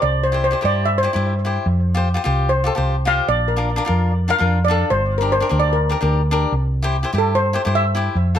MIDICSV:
0, 0, Header, 1, 4, 480
1, 0, Start_track
1, 0, Tempo, 406504
1, 32, Time_signature, 4, 2, 24, 8
1, 9907, End_track
2, 0, Start_track
2, 0, Title_t, "Steel pan"
2, 0, Program_c, 0, 114
2, 24, Note_on_c, 0, 74, 87
2, 276, Note_off_c, 0, 74, 0
2, 278, Note_on_c, 0, 72, 72
2, 507, Note_off_c, 0, 72, 0
2, 521, Note_on_c, 0, 72, 81
2, 764, Note_off_c, 0, 72, 0
2, 769, Note_on_c, 0, 74, 85
2, 1008, Note_off_c, 0, 74, 0
2, 1009, Note_on_c, 0, 76, 85
2, 1159, Note_on_c, 0, 72, 85
2, 1166, Note_off_c, 0, 76, 0
2, 2309, Note_off_c, 0, 72, 0
2, 2943, Note_on_c, 0, 72, 80
2, 3631, Note_on_c, 0, 77, 98
2, 3670, Note_off_c, 0, 72, 0
2, 3880, Note_off_c, 0, 77, 0
2, 3880, Note_on_c, 0, 74, 93
2, 4108, Note_on_c, 0, 70, 59
2, 4124, Note_off_c, 0, 74, 0
2, 4334, Note_off_c, 0, 70, 0
2, 5082, Note_on_c, 0, 77, 110
2, 5486, Note_on_c, 0, 74, 83
2, 5490, Note_off_c, 0, 77, 0
2, 5791, Note_on_c, 0, 72, 89
2, 5809, Note_off_c, 0, 74, 0
2, 6116, Note_on_c, 0, 70, 69
2, 6122, Note_off_c, 0, 72, 0
2, 6279, Note_off_c, 0, 70, 0
2, 6284, Note_on_c, 0, 72, 88
2, 6608, Note_off_c, 0, 72, 0
2, 6608, Note_on_c, 0, 74, 84
2, 6676, Note_off_c, 0, 74, 0
2, 6764, Note_on_c, 0, 70, 74
2, 7205, Note_off_c, 0, 70, 0
2, 8482, Note_on_c, 0, 69, 79
2, 8681, Note_on_c, 0, 72, 88
2, 8682, Note_off_c, 0, 69, 0
2, 9155, Note_on_c, 0, 76, 94
2, 9172, Note_off_c, 0, 72, 0
2, 9600, Note_off_c, 0, 76, 0
2, 9907, End_track
3, 0, Start_track
3, 0, Title_t, "Cavaquinho"
3, 0, Program_c, 1, 24
3, 377, Note_on_c, 1, 64, 72
3, 388, Note_on_c, 1, 67, 62
3, 405, Note_on_c, 1, 72, 76
3, 528, Note_off_c, 1, 64, 0
3, 533, Note_off_c, 1, 67, 0
3, 541, Note_off_c, 1, 72, 0
3, 598, Note_on_c, 1, 64, 66
3, 610, Note_on_c, 1, 67, 63
3, 626, Note_on_c, 1, 72, 73
3, 687, Note_off_c, 1, 64, 0
3, 693, Note_off_c, 1, 67, 0
3, 701, Note_off_c, 1, 72, 0
3, 721, Note_on_c, 1, 64, 63
3, 732, Note_on_c, 1, 67, 60
3, 739, Note_on_c, 1, 72, 67
3, 1027, Note_off_c, 1, 64, 0
3, 1033, Note_off_c, 1, 67, 0
3, 1036, Note_off_c, 1, 72, 0
3, 1215, Note_on_c, 1, 64, 72
3, 1222, Note_on_c, 1, 67, 63
3, 1232, Note_on_c, 1, 72, 76
3, 1299, Note_off_c, 1, 64, 0
3, 1303, Note_off_c, 1, 67, 0
3, 1308, Note_off_c, 1, 72, 0
3, 1335, Note_on_c, 1, 64, 69
3, 1349, Note_on_c, 1, 67, 62
3, 1369, Note_on_c, 1, 72, 79
3, 1562, Note_off_c, 1, 64, 0
3, 1569, Note_off_c, 1, 67, 0
3, 1579, Note_off_c, 1, 72, 0
3, 1709, Note_on_c, 1, 64, 75
3, 1723, Note_on_c, 1, 67, 66
3, 1730, Note_on_c, 1, 72, 67
3, 1952, Note_off_c, 1, 64, 0
3, 1959, Note_off_c, 1, 67, 0
3, 1960, Note_off_c, 1, 72, 0
3, 2297, Note_on_c, 1, 65, 82
3, 2306, Note_on_c, 1, 67, 72
3, 2325, Note_on_c, 1, 72, 91
3, 2448, Note_off_c, 1, 65, 0
3, 2453, Note_off_c, 1, 67, 0
3, 2462, Note_off_c, 1, 72, 0
3, 2530, Note_on_c, 1, 65, 80
3, 2542, Note_on_c, 1, 67, 70
3, 2558, Note_on_c, 1, 72, 92
3, 2614, Note_off_c, 1, 65, 0
3, 2620, Note_off_c, 1, 67, 0
3, 2628, Note_off_c, 1, 72, 0
3, 2644, Note_on_c, 1, 65, 80
3, 2659, Note_on_c, 1, 67, 74
3, 2666, Note_on_c, 1, 72, 78
3, 2949, Note_off_c, 1, 65, 0
3, 2957, Note_off_c, 1, 67, 0
3, 2960, Note_off_c, 1, 72, 0
3, 3115, Note_on_c, 1, 65, 74
3, 3130, Note_on_c, 1, 67, 67
3, 3146, Note_on_c, 1, 69, 79
3, 3210, Note_off_c, 1, 65, 0
3, 3217, Note_off_c, 1, 67, 0
3, 3225, Note_off_c, 1, 69, 0
3, 3246, Note_on_c, 1, 65, 74
3, 3260, Note_on_c, 1, 67, 61
3, 3276, Note_on_c, 1, 72, 82
3, 3478, Note_off_c, 1, 65, 0
3, 3485, Note_off_c, 1, 67, 0
3, 3493, Note_off_c, 1, 72, 0
3, 3605, Note_on_c, 1, 65, 80
3, 3614, Note_on_c, 1, 67, 69
3, 3625, Note_on_c, 1, 72, 84
3, 3860, Note_off_c, 1, 65, 0
3, 3864, Note_off_c, 1, 67, 0
3, 3870, Note_off_c, 1, 72, 0
3, 4209, Note_on_c, 1, 62, 70
3, 4215, Note_on_c, 1, 65, 65
3, 4228, Note_on_c, 1, 70, 79
3, 4364, Note_off_c, 1, 62, 0
3, 4367, Note_off_c, 1, 65, 0
3, 4374, Note_off_c, 1, 70, 0
3, 4442, Note_on_c, 1, 62, 85
3, 4456, Note_on_c, 1, 65, 68
3, 4464, Note_on_c, 1, 70, 96
3, 4529, Note_off_c, 1, 62, 0
3, 4537, Note_off_c, 1, 65, 0
3, 4541, Note_off_c, 1, 70, 0
3, 4545, Note_on_c, 1, 62, 76
3, 4558, Note_on_c, 1, 65, 70
3, 4575, Note_on_c, 1, 70, 85
3, 4859, Note_off_c, 1, 62, 0
3, 4866, Note_off_c, 1, 65, 0
3, 4875, Note_off_c, 1, 70, 0
3, 5052, Note_on_c, 1, 62, 73
3, 5060, Note_on_c, 1, 65, 73
3, 5074, Note_on_c, 1, 70, 76
3, 5138, Note_off_c, 1, 62, 0
3, 5142, Note_off_c, 1, 65, 0
3, 5149, Note_off_c, 1, 70, 0
3, 5178, Note_on_c, 1, 62, 73
3, 5188, Note_on_c, 1, 65, 68
3, 5199, Note_on_c, 1, 70, 75
3, 5403, Note_off_c, 1, 62, 0
3, 5410, Note_off_c, 1, 65, 0
3, 5412, Note_off_c, 1, 70, 0
3, 5529, Note_on_c, 1, 62, 76
3, 5547, Note_on_c, 1, 65, 68
3, 5558, Note_on_c, 1, 69, 86
3, 5781, Note_off_c, 1, 62, 0
3, 5790, Note_off_c, 1, 65, 0
3, 5796, Note_off_c, 1, 69, 0
3, 6149, Note_on_c, 1, 62, 70
3, 6162, Note_on_c, 1, 67, 62
3, 6171, Note_on_c, 1, 70, 70
3, 6294, Note_off_c, 1, 62, 0
3, 6301, Note_off_c, 1, 67, 0
3, 6302, Note_off_c, 1, 70, 0
3, 6382, Note_on_c, 1, 62, 64
3, 6390, Note_on_c, 1, 67, 64
3, 6404, Note_on_c, 1, 70, 80
3, 6459, Note_off_c, 1, 62, 0
3, 6463, Note_off_c, 1, 67, 0
3, 6470, Note_off_c, 1, 70, 0
3, 6487, Note_on_c, 1, 62, 64
3, 6499, Note_on_c, 1, 67, 59
3, 6505, Note_on_c, 1, 70, 71
3, 6790, Note_off_c, 1, 62, 0
3, 6796, Note_off_c, 1, 67, 0
3, 6799, Note_off_c, 1, 70, 0
3, 6960, Note_on_c, 1, 62, 73
3, 6971, Note_on_c, 1, 67, 67
3, 6987, Note_on_c, 1, 70, 86
3, 7052, Note_off_c, 1, 62, 0
3, 7057, Note_off_c, 1, 67, 0
3, 7065, Note_off_c, 1, 70, 0
3, 7092, Note_on_c, 1, 62, 74
3, 7104, Note_on_c, 1, 67, 67
3, 7113, Note_on_c, 1, 70, 71
3, 7320, Note_off_c, 1, 62, 0
3, 7327, Note_off_c, 1, 67, 0
3, 7329, Note_off_c, 1, 70, 0
3, 7453, Note_on_c, 1, 62, 93
3, 7462, Note_on_c, 1, 67, 73
3, 7470, Note_on_c, 1, 70, 96
3, 7703, Note_off_c, 1, 62, 0
3, 7705, Note_off_c, 1, 67, 0
3, 7711, Note_off_c, 1, 70, 0
3, 8059, Note_on_c, 1, 64, 86
3, 8071, Note_on_c, 1, 67, 81
3, 8079, Note_on_c, 1, 72, 98
3, 8208, Note_off_c, 1, 64, 0
3, 8214, Note_off_c, 1, 67, 0
3, 8218, Note_off_c, 1, 72, 0
3, 8300, Note_on_c, 1, 64, 74
3, 8311, Note_on_c, 1, 67, 65
3, 8319, Note_on_c, 1, 72, 77
3, 8378, Note_off_c, 1, 64, 0
3, 8383, Note_off_c, 1, 67, 0
3, 8387, Note_off_c, 1, 72, 0
3, 8415, Note_on_c, 1, 64, 68
3, 8424, Note_on_c, 1, 67, 58
3, 8437, Note_on_c, 1, 72, 73
3, 8714, Note_off_c, 1, 64, 0
3, 8718, Note_off_c, 1, 67, 0
3, 8725, Note_off_c, 1, 72, 0
3, 8894, Note_on_c, 1, 64, 75
3, 8905, Note_on_c, 1, 67, 71
3, 8920, Note_on_c, 1, 72, 89
3, 8979, Note_off_c, 1, 64, 0
3, 8984, Note_off_c, 1, 67, 0
3, 8992, Note_off_c, 1, 72, 0
3, 9031, Note_on_c, 1, 64, 76
3, 9038, Note_on_c, 1, 67, 67
3, 9055, Note_on_c, 1, 72, 83
3, 9250, Note_off_c, 1, 64, 0
3, 9253, Note_off_c, 1, 67, 0
3, 9261, Note_off_c, 1, 72, 0
3, 9384, Note_on_c, 1, 64, 76
3, 9398, Note_on_c, 1, 67, 72
3, 9409, Note_on_c, 1, 72, 86
3, 9629, Note_off_c, 1, 64, 0
3, 9636, Note_off_c, 1, 67, 0
3, 9641, Note_off_c, 1, 72, 0
3, 9856, Note_on_c, 1, 65, 71
3, 9867, Note_on_c, 1, 69, 67
3, 9907, Note_off_c, 1, 65, 0
3, 9907, Note_off_c, 1, 69, 0
3, 9907, End_track
4, 0, Start_track
4, 0, Title_t, "Fingered electric bass"
4, 0, Program_c, 2, 33
4, 33, Note_on_c, 2, 36, 82
4, 631, Note_off_c, 2, 36, 0
4, 759, Note_on_c, 2, 43, 73
4, 1259, Note_off_c, 2, 43, 0
4, 1362, Note_on_c, 2, 43, 76
4, 1855, Note_off_c, 2, 43, 0
4, 1959, Note_on_c, 2, 41, 90
4, 2555, Note_off_c, 2, 41, 0
4, 2672, Note_on_c, 2, 36, 77
4, 3175, Note_off_c, 2, 36, 0
4, 3281, Note_on_c, 2, 36, 79
4, 3774, Note_off_c, 2, 36, 0
4, 3878, Note_on_c, 2, 34, 90
4, 4474, Note_off_c, 2, 34, 0
4, 4595, Note_on_c, 2, 41, 79
4, 5097, Note_off_c, 2, 41, 0
4, 5206, Note_on_c, 2, 41, 78
4, 5697, Note_off_c, 2, 41, 0
4, 5799, Note_on_c, 2, 31, 90
4, 6395, Note_off_c, 2, 31, 0
4, 6512, Note_on_c, 2, 38, 73
4, 7015, Note_off_c, 2, 38, 0
4, 7114, Note_on_c, 2, 38, 80
4, 7610, Note_off_c, 2, 38, 0
4, 7703, Note_on_c, 2, 36, 85
4, 8305, Note_off_c, 2, 36, 0
4, 8425, Note_on_c, 2, 43, 74
4, 8931, Note_off_c, 2, 43, 0
4, 9049, Note_on_c, 2, 43, 76
4, 9539, Note_off_c, 2, 43, 0
4, 9627, Note_on_c, 2, 41, 78
4, 9907, Note_off_c, 2, 41, 0
4, 9907, End_track
0, 0, End_of_file